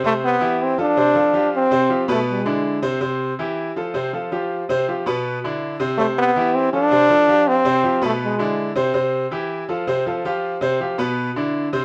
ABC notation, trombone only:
X:1
M:4/4
L:1/8
Q:1/4=162
K:C
V:1 name="Trombone"
A, B,2 C D4 | C3 A, ^G,3 z | z8 | z8 |
A, B,2 C D4 | C3 A, ^G,3 z | z8 | z8 |]